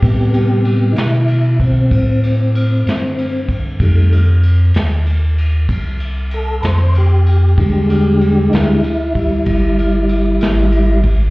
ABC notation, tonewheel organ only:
X:1
M:12/8
L:1/8
Q:3/8=64
K:Am
V:1 name="Tonewheel organ"
G G2 [^DE]2 C6 z | z8 A [Bc] G2- | G G2 [^DE]2 [G,E]6 z |]
V:2 name="Tonewheel organ" clef=bass
[C,G,B,]3 z8 z | [_E,G,A,] z8 z3 | [D,G,^G,]3 [D,=G,^G,] z8 |]